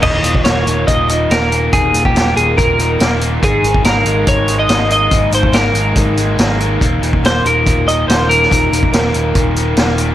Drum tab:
CC |x---------------|----------------|----------------|----------------|
HH |--x-x-x-x-x-x-x-|x-x-x-x-x-x-x-x-|x-x-x-x-x-x-x-x-|x-x-x-x-x-x-x-x-|
SD |----oo------o---|----o-------o---|----o-------o---|----o-------o---|
BD |o--o----o-------|o--o----o-------|o--o----o-------|o--o----o-------|

CC |----------------|----------------|
HH |x-x-x-x-x-x-x-x-|x-x-x-x-x-x-x-x-|
SD |----o-------o--o|----o-------o---|
BD |o--o----o-------|o--o----o-------|